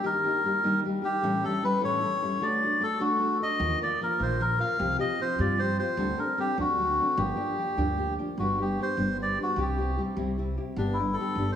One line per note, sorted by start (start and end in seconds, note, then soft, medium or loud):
0.03 0.24 D#3 medium
0.03 0.24 G3 medium
0.03 0.24 A#3 medium
0.03 0.24 D#4 medium
0.03 0.23 G4 medium
0.03 0.80 A#4 loud
0.24 0.43 A#3 medium
0.24 0.44 D#4 medium
0.24 0.44 G4 medium
0.44 0.63 G3 medium
0.44 0.63 A#3 medium
0.44 0.63 D#4 medium
0.44 0.63 G4 medium
0.64 0.84 D#3 medium
0.64 0.83 G3 medium
0.64 0.84 A#3 medium
0.64 0.84 D#4 medium
0.64 0.83 G4 medium
0.84 1.03 G3 medium
0.84 1.03 A#3 medium
0.84 1.02 D#4 medium
0.84 1.01 G4 medium
1.02 1.23 A#3 soft
1.02 1.23 D#4 soft
1.02 1.22 G4 medium
1.02 1.45 G4 loud
1.22 1.42 A2 medium
1.22 1.43 E3 medium
1.22 1.43 G3 medium
1.22 1.43 C#4 medium
1.22 1.42 E4 medium
1.22 1.43 A4 medium
1.44 1.62 G3 medium
1.44 1.62 C#4 medium
1.44 1.63 E4 medium
1.44 1.63 A4 medium
1.44 1.64 A4 loud
1.63 1.81 G3 medium
1.63 1.81 C#4 medium
1.63 1.81 E4 medium
1.63 1.80 A4 medium
1.63 1.82 B4 loud
1.81 2.02 A2 medium
1.81 2.02 E3 medium
1.81 1.99 G3 medium
1.81 2.00 C#4 medium
1.81 2.00 E4 medium
1.81 2.01 A4 medium
1.81 2.44 C#5 loud
2.00 2.21 G3 soft
2.00 2.21 C#4 medium
2.00 2.21 E4 medium
2.00 2.21 A4 medium
2.22 2.41 G3 soft
2.22 2.40 C#4 soft
2.22 2.41 E4 medium
2.22 2.41 A4 soft
2.41 2.61 D3 medium
2.41 2.61 A3 medium
2.41 2.61 D4 medium
2.41 2.61 F#4 medium
2.41 2.61 A4 medium
2.41 2.83 D5 medium
2.62 2.79 D4 soft
2.62 2.79 F#4 medium
2.62 2.80 A4 medium
2.80 3.00 A3 medium
2.80 3.00 D4 medium
2.80 2.99 F#4 medium
2.80 2.98 A4 medium
2.80 3.02 A4 loud
3.00 3.21 D3 medium
3.00 3.18 A3 medium
3.00 3.18 D4 medium
3.00 3.19 F#4 medium
3.00 3.38 F#4 medium
3.00 3.20 A4 medium
3.19 3.40 A3 soft
3.19 3.40 D4 medium
3.19 3.40 F#4 medium
3.19 3.39 A4 medium
3.40 3.60 D4 soft
3.40 3.60 F#4 soft
3.40 3.60 A4 medium
3.40 3.79 D#5 loud
3.60 3.73 D#2 loud
3.60 3.81 D#3 medium
3.60 3.80 F3 medium
3.60 3.81 A#3 medium
3.60 3.81 F4 medium
3.60 3.80 A#4 medium
3.81 4.00 A#3 soft
3.81 4.00 F4 medium
3.81 4.00 A#4 medium
3.81 4.00 D5 loud
4.01 4.19 F3 medium
4.01 4.19 A#3 medium
4.01 4.18 F4 medium
4.01 4.17 A#4 medium
4.01 4.22 A#4 medium
4.19 4.59 A#1 medium
4.19 4.40 D#3 medium
4.19 4.38 F3 medium
4.19 4.39 A#3 medium
4.19 4.40 F4 medium
4.19 4.39 A#4 medium
4.19 4.42 C5 medium
4.39 4.60 F3 soft
4.39 4.59 A#3 medium
4.39 4.59 F4 medium
4.39 4.58 A#4 medium
4.39 4.59 A#4 loud
4.59 4.79 A#3 soft
4.59 4.78 F4 medium
4.59 4.79 A#4 medium
4.59 4.97 F5 loud
4.78 4.93 C2 loud
4.78 4.99 C3 medium
4.78 4.99 F3 medium
4.78 4.99 C4 medium
4.78 5.00 F4 medium
4.78 4.98 G4 medium
4.99 5.19 C4 medium
4.99 5.19 F4 soft
4.99 5.19 G4 medium
4.99 5.20 D#5 loud
5.20 5.39 F3 medium
5.20 5.39 C4 medium
5.20 5.40 F4 medium
5.20 5.39 G4 medium
5.20 5.41 C5 loud
5.39 5.77 G2 medium
5.39 5.60 C3 medium
5.39 5.59 F3 medium
5.39 5.59 C4 medium
5.39 5.60 F4 medium
5.39 5.59 G4 medium
5.39 5.60 D5 medium
5.59 5.79 F3 medium
5.59 5.79 C4 medium
5.59 5.80 F4 medium
5.59 5.78 G4 medium
5.59 5.77 C5 loud
5.79 5.97 C4 soft
5.79 5.98 F4 soft
5.79 5.98 G4 medium
5.79 6.20 C5 loud
5.97 6.11 D2 loud
5.97 6.18 D3 medium
5.97 6.18 G3 medium
5.97 6.18 C4 medium
5.97 6.18 D4 medium
5.97 6.17 A4 medium
6.18 6.36 C4 soft
6.18 6.38 D4 medium
6.18 6.37 A4 medium
6.18 6.39 A#4 medium
6.38 6.58 G3 medium
6.38 6.57 C4 medium
6.38 6.57 D4 medium
6.38 6.57 G4 loud
6.38 6.57 A4 medium
6.58 6.97 D2 medium
6.58 6.79 D3 soft
6.58 6.77 F#3 soft
6.58 6.78 C4 medium
6.58 6.78 D4 medium
6.58 7.21 F#4 medium
6.58 6.78 A4 medium
6.78 6.98 F#3 soft
6.78 6.98 C4 medium
6.78 6.99 D4 medium
6.78 6.98 A4 medium
6.99 7.18 C4 soft
6.99 7.17 D4 soft
6.99 7.18 A4 soft
7.17 7.30 G1 loud
7.17 7.37 G2 medium
7.17 7.37 D3 medium
7.17 7.37 F3 medium
7.17 7.36 A#3 medium
7.17 7.36 D4 medium
7.17 8.14 G4 medium
7.17 7.35 G4 medium
7.37 7.56 F3 medium
7.37 7.57 A#3 medium
7.37 7.57 D4 medium
7.37 7.57 G4 medium
7.58 7.77 F3 medium
7.58 7.77 A#3 medium
7.58 7.77 D4 medium
7.58 7.76 G4 medium
7.77 8.16 D2 medium
7.77 7.99 G2 medium
7.77 7.98 D3 medium
7.77 7.96 F3 medium
7.77 7.97 A#3 medium
7.77 7.98 D4 medium
7.77 7.98 G4 medium
7.97 8.17 F3 soft
7.97 8.18 A#3 medium
7.97 8.18 D4 medium
7.97 8.17 G4 medium
8.19 8.39 F3 soft
8.19 8.39 A#3 soft
8.19 8.39 D4 medium
8.19 8.38 G4 soft
8.38 8.77 G1 medium
8.38 8.59 G2 medium
8.38 8.59 D3 medium
8.38 8.59 G3 medium
8.38 8.59 B3 medium
8.38 8.58 D4 medium
8.38 8.59 F#4 medium
8.38 8.57 G4 medium
8.58 8.78 G3 soft
8.58 8.78 B3 soft
8.58 8.78 D4 medium
8.58 8.78 G4 medium
8.58 8.80 G4 medium
8.79 8.97 G3 medium
8.79 8.96 B3 medium
8.79 8.97 D4 medium
8.79 8.96 G4 medium
8.79 9.17 C5 medium
8.97 9.36 G1 medium
8.97 9.18 G2 medium
8.97 9.18 D3 medium
8.97 9.18 G3 medium
8.97 9.18 B3 soft
8.97 9.18 D4 medium
8.97 9.18 G4 medium
9.19 9.38 G3 medium
9.19 9.39 B3 medium
9.19 9.39 D4 soft
9.19 9.37 G4 soft
9.19 9.39 D5 loud
9.39 9.56 G3 soft
9.39 9.57 B3 soft
9.39 9.58 D4 soft
9.39 9.57 G4 soft
9.43 9.61 F#4 medium
9.56 9.95 C2 medium
9.56 9.78 C3 medium
9.56 9.78 G3 medium
9.56 9.78 C4 medium
9.56 9.77 E4 medium
9.56 9.77 G4 medium
9.61 10.01 G4 medium
9.78 9.96 C4 soft
9.78 9.97 E4 medium
9.78 9.98 G4 medium
9.97 10.17 G3 medium
9.97 10.16 C4 medium
9.97 10.17 E4 medium
9.97 10.16 G4 medium
10.17 10.55 C2 medium
10.17 10.38 C3 medium
10.17 10.37 G3 medium
10.17 10.37 C4 medium
10.17 10.38 E4 medium
10.17 10.37 G4 medium
10.38 10.57 G3 medium
10.38 10.57 C4 medium
10.38 10.56 E4 medium
10.38 10.56 G4 medium
10.57 10.77 C4 soft
10.57 10.77 E4 soft
10.57 10.77 G4 medium
10.76 11.15 G1 loud
10.76 10.98 G2 medium
10.76 10.98 D3 medium
10.76 10.98 G3 medium
10.76 10.98 B3 medium
10.76 10.98 D4 medium
10.76 10.98 G4 medium
10.94 11.16 E4 medium
10.99 11.18 G3 soft
10.99 11.18 B3 soft
10.99 11.18 D4 medium
10.99 11.18 G4 medium
11.13 11.51 A4 medium
11.19 11.37 G3 medium
11.19 11.37 B3 medium
11.19 11.37 D4 medium
11.19 11.37 G4 medium
11.35 11.55 G1 medium
11.35 11.55 G2 medium
11.35 11.55 D3 medium
11.35 11.55 G3 medium
11.35 11.55 B3 medium
11.35 11.55 D4 medium
11.35 11.55 G4 medium
11.52 11.55 C5 medium